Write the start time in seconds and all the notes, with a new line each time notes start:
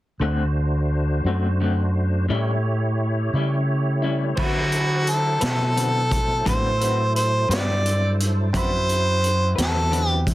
0.19 D2 D3 A3 C4 D4 F#4 C5
1.24 F#2 A3 C4 F#4
1.61 D3 A3 C4 F#4
2.29 A2 G3 A3 C#4 E4 G4 C#5
3.33 C#3 G3 C#4 E4
4.02 G3 C#4 E4
4.35 D3 F#3 C4 E4 F#4 A4 B4 C5 B5, kick, crash
4.41 F#4
4.72 closed hi-hat
5.07 A4, closed hi-hat
5.41 B2 C4 F#4 B4, snare, closed hi-hat
5.76 D3 C4 F#4 B4, closed hi-hat
6.11 kick, closed hi-hat
6.46 A2 D3 C4 F#4 B4 C5, kick, closed hi-hat
6.80 C4 F#4 B4, closed hi-hat
7.15 C5, closed hi-hat
7.49 G2 C4 F#4 B4 D5, closed hi-hat
7.53 snare
7.86 closed hi-hat
8.20 closed hi-hat
8.53 F#2 D3 F#3 C4 E4 F#4 B4 C5 B5, kick, closed hi-hat
8.89 closed hi-hat
9.24 closed hi-hat
9.56 E2 C4 F#4 B4, closed hi-hat
9.61 A4, snare
9.91 D3 C4 F#4 B4, closed hi-hat
10.09 G4
10.27 kick, closed hi-hat